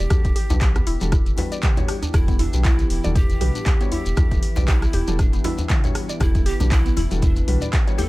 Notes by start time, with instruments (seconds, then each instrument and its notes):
Already playing: analog synth pad E3 B3 E4 G4, pan flute G4
0.10 felt piano G3 D4 F#4 A4, synth arpeggio sound G4, kick, cross-stick, closed hi-hat, djembe tone, djembe bass, shekere
0.25 sub bass E1, kick, closed hi-hat, shekere
0.36 synth arpeggio sound G4, open hi-hat
0.50 sub bass B1, felt piano G3 D4 F#4 B4, synth arpeggio sound D4, closed hi-hat, djembe slap, djembe tone, shekere
0.61 kick, clap, closed hi-hat, shekere
0.75 synth arpeggio sound B3, cross-stick, closed hi-hat, djembe tone, shekere
0.87 sub bass E1, synth arpeggio sound E4, open hi-hat
1.01 sub bass E1, felt piano G3 D4 F#4 A4, closed hi-hat, mid tom, shekere
1.12 synth arpeggio sound E4, kick, cross-stick, closed hi-hat, djembe tone, shekere
1.26 closed hi-hat, shekere
1.37 felt piano G3 D4 F#4 B4, open hi-hat, djembe slap, djembe tone
1.52 synth arpeggio sound D5, closed hi-hat, shekere
1.63 synth arpeggio sound G4, kick, clap, closed hi-hat, mid tom, shekere
1.77 felt piano G3 D4 F#4 C#5, closed hi-hat, djembe tone, shekere
1.88 synth arpeggio sound G4, cross-stick, open hi-hat
2.02 synth arpeggio sound D4, closed hi-hat, djembe tone, shekere
2.14 sub bass E1, felt piano G3 D4 F#4 A4, pan flute E4, kick, cross-stick, closed hi-hat, djembe bass, shekere
2.28 synth arpeggio sound B3, kick, closed hi-hat, shekere
2.39 pan flute D4, synth arpeggio sound E4, open hi-hat, djembe tone
2.53 sub bass B1, felt piano G3 D4 F#4 B4, closed hi-hat, shekere
2.65 synth arpeggio sound E4, pan flute E4, kick, clap, closed hi-hat, djembe tone, shekere
2.79 closed hi-hat, shekere
2.90 sub bass E1, pan flute E4, open hi-hat
3.04 sub bass E1, felt piano G3 D4 F#4 A4, synth arpeggio sound D5, closed hi-hat, mid tom, djembe tone, shekere
3.15 synth arpeggio sound G4, pan flute G4, kick, closed hi-hat, djembe bass, shekere
3.29 closed hi-hat, djembe tone, shekere
3.41 sub bass B1, felt piano G3 D4 F#4 B4, synth arpeggio sound G4, mid tom, open hi-hat
3.55 synth arpeggio sound D4, closed hi-hat, shekere
3.66 kick, clap, closed hi-hat, djembe tone, shekere
3.81 felt piano G3 D4 F#4 C#5, synth arpeggio sound B3, closed hi-hat, shekere
3.91 synth arpeggio sound E4, pan flute G4, open hi-hat, djembe tone
4.06 sub bass E1, closed hi-hat, shekere
4.17 felt piano G3 D4 F#4 A4, synth arpeggio sound E4, kick, cross-stick, closed hi-hat, djembe bass, shekere
4.31 sub bass E1, kick, closed hi-hat, djembe tone, shekere
4.43 open hi-hat
4.56 sub bass B1, felt piano G3 D4 F#4 B4, synth arpeggio sound D5, closed hi-hat, djembe slap, djembe tone, shekere
4.68 pan flute E4, synth arpeggio sound G4, kick, clap, closed hi-hat, shekere
4.82 cross-stick, closed hi-hat, shekere
4.93 sub bass E1, synth arpeggio sound G4, open hi-hat, djembe tone
5.08 sub bass E1, felt piano G3 D4 F#4 A4, synth arpeggio sound D4, closed hi-hat, mid tom, shekere
5.19 pan flute D4, kick, cross-stick, closed hi-hat, djembe tone, shekere
5.33 synth arpeggio sound B3, closed hi-hat, shekere
5.44 felt piano G3 D4 F#4 B4, synth arpeggio sound E4, open hi-hat, djembe slap
5.58 closed hi-hat, djembe tone, shekere
5.70 synth arpeggio sound E4, kick, clap, closed hi-hat, mid tom, shekere
5.84 felt piano G3 D4 F#4 C#5, closed hi-hat, djembe tone, shekere
5.95 cross-stick, open hi-hat
6.09 synth arpeggio sound D5, closed hi-hat, shekere
6.20 sub bass E1, felt piano G3 D4 F#4 A4, pan flute E4, synth arpeggio sound G4, analog synth pad B4, kick, cross-stick, closed hi-hat, djembe bass, shekere
6.35 kick, closed hi-hat, djembe tone, shekere
6.46 synth arpeggio sound G4, pan flute G4, open hi-hat
6.60 sub bass B1, felt piano G3 D4 F#4 B4, synth arpeggio sound D4, closed hi-hat, high conga, low conga, shekere
6.71 pan flute E4, kick, clap, closed hi-hat, djembe tone, shekere
6.86 synth arpeggio sound B3, closed hi-hat, shekere
6.96 sub bass E1, synth arpeggio sound E4, pan flute E4, open hi-hat, high conga, djembe tone, low conga
7.11 sub bass E1, felt piano G3 D4 F#4 A4, closed hi-hat, mid tom, shekere
7.22 pan flute D4, synth arpeggio sound E4, kick, closed hi-hat, high conga, djembe bass, shekere
7.36 closed hi-hat, djembe tone, shekere
7.48 sub bass B1, felt piano G3 D4 F#4 B4, mid tom, open hi-hat
7.61 synth arpeggio sound D5, closed hi-hat, djembe tone, shekere
7.73 synth arpeggio sound G4, kick, clap, closed hi-hat, shekere
7.87 felt piano G3 D4 F#4 C#5, closed hi-hat, shekere
7.98 synth arpeggio sound G4, pan flute A4, open hi-hat, high conga, djembe tone